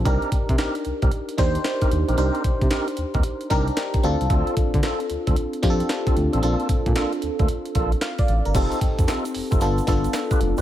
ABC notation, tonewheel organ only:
X:1
M:4/4
L:1/16
Q:"Swing 16ths" 1/4=113
K:Cdor
V:1 name="Tonewheel organ"
[CEGB]2 z2 [CEGB] z2 [CEGB] z4 z [CEGB] z [CEGB] | [CEGB]2 z2 [CEGB] z2 [CEGB] z2 [CEGB] z4 z | [CDFA]2 z2 [CDFA] z2 [CDFA] z4 z [CDFA] z [CDFA] | [B,DFA]2 z2 [B,DFA] z2 [B,DFA] z2 [B,DFA] z4 z |
[CEFA]2 z2 [CEFA] z2 [CEFA] z4 z [DFG=B] z [DFGB] |]